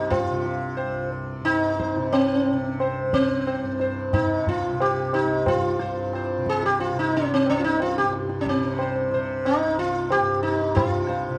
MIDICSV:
0, 0, Header, 1, 4, 480
1, 0, Start_track
1, 0, Tempo, 670391
1, 78, Time_signature, 4, 2, 24, 8
1, 3918, Tempo, 661521
1, 8206, End_track
2, 0, Start_track
2, 0, Title_t, "Sitar"
2, 0, Program_c, 0, 104
2, 74, Note_on_c, 0, 65, 91
2, 550, Note_on_c, 0, 72, 43
2, 770, Note_off_c, 0, 65, 0
2, 779, Note_off_c, 0, 72, 0
2, 1037, Note_on_c, 0, 63, 101
2, 1283, Note_on_c, 0, 72, 34
2, 1506, Note_off_c, 0, 72, 0
2, 1522, Note_on_c, 0, 60, 88
2, 1535, Note_off_c, 0, 63, 0
2, 1974, Note_off_c, 0, 60, 0
2, 2013, Note_on_c, 0, 72, 39
2, 2231, Note_off_c, 0, 72, 0
2, 2246, Note_on_c, 0, 60, 72
2, 2487, Note_on_c, 0, 72, 38
2, 2708, Note_off_c, 0, 72, 0
2, 2727, Note_on_c, 0, 72, 37
2, 2947, Note_off_c, 0, 72, 0
2, 2961, Note_on_c, 0, 63, 80
2, 2984, Note_off_c, 0, 60, 0
2, 3207, Note_off_c, 0, 63, 0
2, 3212, Note_on_c, 0, 65, 79
2, 3445, Note_off_c, 0, 65, 0
2, 3447, Note_on_c, 0, 67, 84
2, 3677, Note_off_c, 0, 67, 0
2, 3679, Note_on_c, 0, 63, 81
2, 3922, Note_off_c, 0, 63, 0
2, 3925, Note_on_c, 0, 65, 99
2, 4164, Note_on_c, 0, 72, 35
2, 4386, Note_off_c, 0, 72, 0
2, 4412, Note_on_c, 0, 72, 40
2, 4630, Note_off_c, 0, 72, 0
2, 4657, Note_off_c, 0, 65, 0
2, 4660, Note_on_c, 0, 68, 97
2, 4774, Note_off_c, 0, 68, 0
2, 4778, Note_on_c, 0, 67, 86
2, 4881, Note_off_c, 0, 67, 0
2, 4884, Note_on_c, 0, 65, 96
2, 5007, Note_off_c, 0, 65, 0
2, 5019, Note_on_c, 0, 63, 88
2, 5134, Note_off_c, 0, 63, 0
2, 5147, Note_on_c, 0, 61, 80
2, 5258, Note_off_c, 0, 61, 0
2, 5271, Note_on_c, 0, 60, 89
2, 5380, Note_off_c, 0, 60, 0
2, 5386, Note_on_c, 0, 61, 91
2, 5458, Note_on_c, 0, 65, 65
2, 5467, Note_off_c, 0, 61, 0
2, 5486, Note_off_c, 0, 65, 0
2, 5493, Note_on_c, 0, 63, 84
2, 5612, Note_off_c, 0, 63, 0
2, 5620, Note_on_c, 0, 65, 87
2, 5734, Note_off_c, 0, 65, 0
2, 5737, Note_on_c, 0, 67, 82
2, 5843, Note_off_c, 0, 67, 0
2, 6049, Note_on_c, 0, 61, 56
2, 6089, Note_off_c, 0, 61, 0
2, 6108, Note_on_c, 0, 60, 77
2, 6342, Note_on_c, 0, 72, 41
2, 6556, Note_off_c, 0, 72, 0
2, 6578, Note_on_c, 0, 72, 39
2, 6794, Note_off_c, 0, 72, 0
2, 6812, Note_on_c, 0, 63, 81
2, 6837, Note_off_c, 0, 60, 0
2, 7030, Note_off_c, 0, 63, 0
2, 7051, Note_on_c, 0, 65, 87
2, 7286, Note_off_c, 0, 65, 0
2, 7289, Note_on_c, 0, 67, 107
2, 7508, Note_off_c, 0, 67, 0
2, 7514, Note_on_c, 0, 63, 87
2, 7744, Note_off_c, 0, 63, 0
2, 7747, Note_on_c, 0, 65, 91
2, 7990, Note_on_c, 0, 72, 38
2, 8206, Note_off_c, 0, 65, 0
2, 8206, Note_off_c, 0, 72, 0
2, 8206, End_track
3, 0, Start_track
3, 0, Title_t, "Tanpura"
3, 0, Program_c, 1, 104
3, 0, Note_on_c, 1, 36, 65
3, 0, Note_on_c, 1, 43, 59
3, 0, Note_on_c, 1, 48, 60
3, 220, Note_off_c, 1, 48, 0
3, 220, Note_on_c, 1, 48, 64
3, 623, Note_off_c, 1, 36, 0
3, 625, Note_on_c, 1, 36, 62
3, 1005, Note_off_c, 1, 43, 0
3, 1008, Note_on_c, 1, 43, 57
3, 1410, Note_off_c, 1, 48, 0
3, 1410, Note_on_c, 1, 48, 57
3, 1810, Note_off_c, 1, 48, 0
3, 1810, Note_on_c, 1, 48, 59
3, 2206, Note_off_c, 1, 36, 0
3, 2208, Note_on_c, 1, 36, 61
3, 2597, Note_off_c, 1, 43, 0
3, 2600, Note_on_c, 1, 43, 56
3, 2994, Note_off_c, 1, 48, 0
3, 2994, Note_on_c, 1, 48, 61
3, 3383, Note_off_c, 1, 48, 0
3, 3383, Note_on_c, 1, 48, 61
3, 3763, Note_off_c, 1, 36, 0
3, 3765, Note_on_c, 1, 36, 62
3, 4168, Note_off_c, 1, 43, 0
3, 4171, Note_on_c, 1, 43, 55
3, 4577, Note_off_c, 1, 48, 0
3, 4577, Note_on_c, 1, 48, 62
3, 4982, Note_off_c, 1, 48, 0
3, 4982, Note_on_c, 1, 48, 60
3, 5382, Note_off_c, 1, 36, 0
3, 5385, Note_on_c, 1, 36, 71
3, 5777, Note_off_c, 1, 43, 0
3, 5780, Note_on_c, 1, 43, 58
3, 6164, Note_off_c, 1, 48, 0
3, 6164, Note_on_c, 1, 48, 56
3, 6572, Note_off_c, 1, 48, 0
3, 6572, Note_on_c, 1, 48, 66
3, 6952, Note_off_c, 1, 36, 0
3, 6955, Note_on_c, 1, 36, 66
3, 7350, Note_off_c, 1, 43, 0
3, 7353, Note_on_c, 1, 43, 69
3, 7753, Note_off_c, 1, 48, 0
3, 7753, Note_on_c, 1, 48, 61
3, 8141, Note_off_c, 1, 48, 0
3, 8141, Note_on_c, 1, 48, 61
3, 8206, Note_off_c, 1, 36, 0
3, 8206, Note_off_c, 1, 43, 0
3, 8206, Note_off_c, 1, 48, 0
3, 8206, End_track
4, 0, Start_track
4, 0, Title_t, "Tabla"
4, 82, Note_on_c, 9, 60, 98
4, 82, Note_on_c, 9, 64, 95
4, 153, Note_off_c, 9, 60, 0
4, 153, Note_off_c, 9, 64, 0
4, 325, Note_on_c, 9, 62, 68
4, 397, Note_off_c, 9, 62, 0
4, 561, Note_on_c, 9, 60, 79
4, 633, Note_off_c, 9, 60, 0
4, 803, Note_on_c, 9, 62, 59
4, 875, Note_off_c, 9, 62, 0
4, 1044, Note_on_c, 9, 60, 78
4, 1116, Note_off_c, 9, 60, 0
4, 1287, Note_on_c, 9, 37, 60
4, 1359, Note_off_c, 9, 37, 0
4, 1408, Note_on_c, 9, 62, 62
4, 1479, Note_off_c, 9, 62, 0
4, 1528, Note_on_c, 9, 60, 81
4, 1599, Note_off_c, 9, 60, 0
4, 1763, Note_on_c, 9, 60, 58
4, 1835, Note_off_c, 9, 60, 0
4, 2005, Note_on_c, 9, 60, 75
4, 2077, Note_off_c, 9, 60, 0
4, 2242, Note_on_c, 9, 37, 58
4, 2314, Note_off_c, 9, 37, 0
4, 2486, Note_on_c, 9, 60, 78
4, 2557, Note_off_c, 9, 60, 0
4, 2717, Note_on_c, 9, 62, 60
4, 2789, Note_off_c, 9, 62, 0
4, 2958, Note_on_c, 9, 60, 81
4, 2958, Note_on_c, 9, 64, 71
4, 3029, Note_off_c, 9, 60, 0
4, 3029, Note_off_c, 9, 64, 0
4, 3200, Note_on_c, 9, 64, 53
4, 3271, Note_off_c, 9, 64, 0
4, 3440, Note_on_c, 9, 60, 81
4, 3511, Note_off_c, 9, 60, 0
4, 3675, Note_on_c, 9, 60, 62
4, 3747, Note_off_c, 9, 60, 0
4, 3911, Note_on_c, 9, 60, 93
4, 3911, Note_on_c, 9, 64, 88
4, 3984, Note_off_c, 9, 60, 0
4, 3984, Note_off_c, 9, 64, 0
4, 4152, Note_on_c, 9, 62, 72
4, 4224, Note_off_c, 9, 62, 0
4, 4398, Note_on_c, 9, 60, 72
4, 4470, Note_off_c, 9, 60, 0
4, 4636, Note_on_c, 9, 37, 58
4, 4709, Note_off_c, 9, 37, 0
4, 4755, Note_on_c, 9, 62, 55
4, 4827, Note_off_c, 9, 62, 0
4, 4880, Note_on_c, 9, 60, 72
4, 4953, Note_off_c, 9, 60, 0
4, 5126, Note_on_c, 9, 62, 62
4, 5199, Note_off_c, 9, 62, 0
4, 5362, Note_on_c, 9, 60, 80
4, 5435, Note_off_c, 9, 60, 0
4, 5606, Note_on_c, 9, 60, 55
4, 5678, Note_off_c, 9, 60, 0
4, 5848, Note_on_c, 9, 62, 72
4, 5921, Note_off_c, 9, 62, 0
4, 5965, Note_on_c, 9, 62, 64
4, 6038, Note_off_c, 9, 62, 0
4, 6087, Note_on_c, 9, 37, 54
4, 6160, Note_off_c, 9, 37, 0
4, 6207, Note_on_c, 9, 62, 62
4, 6279, Note_off_c, 9, 62, 0
4, 6323, Note_on_c, 9, 60, 72
4, 6396, Note_off_c, 9, 60, 0
4, 6563, Note_on_c, 9, 62, 59
4, 6635, Note_off_c, 9, 62, 0
4, 6807, Note_on_c, 9, 60, 80
4, 6879, Note_off_c, 9, 60, 0
4, 7043, Note_on_c, 9, 62, 56
4, 7116, Note_off_c, 9, 62, 0
4, 7279, Note_on_c, 9, 60, 83
4, 7352, Note_off_c, 9, 60, 0
4, 7521, Note_on_c, 9, 60, 57
4, 7593, Note_off_c, 9, 60, 0
4, 7759, Note_on_c, 9, 60, 105
4, 7759, Note_on_c, 9, 64, 93
4, 7832, Note_off_c, 9, 60, 0
4, 7832, Note_off_c, 9, 64, 0
4, 8000, Note_on_c, 9, 62, 72
4, 8073, Note_off_c, 9, 62, 0
4, 8206, End_track
0, 0, End_of_file